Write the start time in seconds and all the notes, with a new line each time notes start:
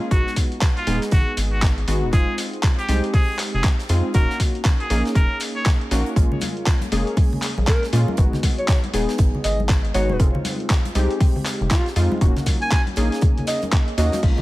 0.11 G#1 G#3 B3 D#4 F#4, kick, closed hi-hat
0.27 snare
0.36 kick, closed hi-hat, open hi-hat
0.52 closed hi-hat
0.61 kick, snare, clap, closed hi-hat
0.77 F4, closed hi-hat
0.87 D#1 G#3 B3 D#4 G#4, closed hi-hat, open hi-hat
1.02 snare, closed hi-hat
1.11 G#1 F#4, kick, closed hi-hat
1.37 G#1, closed hi-hat, open hi-hat
1.53 F#4
1.62 kick, snare, clap, closed hi-hat
1.78 closed hi-hat
1.88 G#1 G#3 B3 D#4 F#4, closed hi-hat, open hi-hat
2.03 D#1
2.13 F1 G#3 C4 D#4 F4 G#4, kick, closed hi-hat
2.38 closed hi-hat, open hi-hat
2.53 closed hi-hat
2.63 kick, snare, clap, closed hi-hat
2.78 G4, closed hi-hat
2.88 C2 G#3 C4 D#4 G4, closed hi-hat, open hi-hat
3.04 closed hi-hat
3.14 G#4, kick, closed hi-hat, open hi-hat
3.39 clap, closed hi-hat, open hi-hat
3.54 F1 G#4
3.64 kick, snare, clap, closed hi-hat
3.79 snare, closed hi-hat
3.89 F2 G#3 C4 D#4 F4, closed hi-hat, open hi-hat
4.14 D#1 A#3 C#4 D#4 F#4 A#4, kick, closed hi-hat
4.30 snare
4.40 kick, closed hi-hat, open hi-hat
4.55 closed hi-hat
4.65 kick, snare, clap, closed hi-hat
4.80 G#4, closed hi-hat
4.90 A#1 A#3 C#4 D#4 G#4, closed hi-hat, open hi-hat
5.05 snare, closed hi-hat
5.15 D#1 A#4, kick, closed hi-hat
5.40 closed hi-hat, open hi-hat
5.56 C#5
5.66 kick, snare, clap, closed hi-hat
5.81 closed hi-hat
5.91 A#1 A#3 C#4 D#4 F#4, snare, closed hi-hat, open hi-hat
6.06 closed hi-hat
6.16 A#1 G#3 A#3 C#4 F4, kick, closed hi-hat
6.32 low conga
6.41 closed hi-hat, open hi-hat, high conga
6.57 closed hi-hat
6.67 kick, snare, clap, closed hi-hat
6.81 closed hi-hat, high conga
6.92 F1 G#3 A#3 C#4 G#4, closed hi-hat, open hi-hat
7.07 closed hi-hat
7.17 kick, closed hi-hat, open hi-hat, high conga
7.33 low conga
7.42 clap, closed hi-hat, open hi-hat
7.58 A#1, high conga
7.67 A#4, kick, snare, clap, closed hi-hat
7.83 snare, closed hi-hat
7.93 A#2 G#3 A#3 C#4 F4, closed hi-hat, open hi-hat
8.08 high conga
8.17 G#1 G#3 B3 D#4 F#4, kick, closed hi-hat
8.33 snare, low conga
8.43 kick, closed hi-hat, open hi-hat, high conga
8.58 C#5, closed hi-hat
8.68 C#5, kick, snare, clap, closed hi-hat
8.84 closed hi-hat, high conga
8.93 D#1 G#3 B3 D#4 G#4, closed hi-hat, open hi-hat
9.09 snare, closed hi-hat
9.18 G#1, kick, closed hi-hat, high conga
9.35 low conga
9.44 G#1 D#5, closed hi-hat, open hi-hat
9.60 high conga
9.69 kick, snare, clap, closed hi-hat
9.85 closed hi-hat
9.94 G#1 G#3 B3 D#4 F#4 C#5, closed hi-hat, open hi-hat
10.09 D#1, high conga
10.20 F1 G#3 C4 D#4 F4, kick, closed hi-hat
10.35 low conga
10.45 closed hi-hat, open hi-hat, high conga
10.60 closed hi-hat
10.70 kick, snare, clap, closed hi-hat
10.85 closed hi-hat, high conga
10.95 C2 G#3 C4 D#4 G4, closed hi-hat, open hi-hat
11.10 closed hi-hat
11.20 kick, closed hi-hat, open hi-hat, high conga
11.36 low conga
11.45 clap, closed hi-hat, open hi-hat
11.61 F1, high conga
11.71 F4, kick, snare, clap, closed hi-hat
11.86 snare, closed hi-hat
11.96 F2 G#3 C4 D#4 F4, closed hi-hat, open hi-hat
12.12 high conga
12.21 D#1 A#3 C#4 D#4 F#4, kick, closed hi-hat
12.36 snare, closed hi-hat, low conga
12.46 kick, closed hi-hat, open hi-hat, high conga
12.62 G#5, closed hi-hat
12.71 G#5, kick, snare, clap, closed hi-hat
12.87 closed hi-hat, high conga
12.96 A#1 A#3 C#4 D#4 G#4, closed hi-hat, open hi-hat
13.12 snare, closed hi-hat
13.21 kick, closed hi-hat, high conga, low conga
13.37 closed hi-hat, low conga
13.47 D#5, snare, closed hi-hat, open hi-hat
13.62 closed hi-hat, high conga
13.72 kick, clap, closed hi-hat
13.88 closed hi-hat
13.98 D#2 A#3 C#4 D#4 F#4 D#5, snare, closed hi-hat, open hi-hat
14.12 snare, closed hi-hat, high conga
14.23 A#1 G#3 A#3 C#4 F4, kick, closed hi-hat, crash
14.38 low conga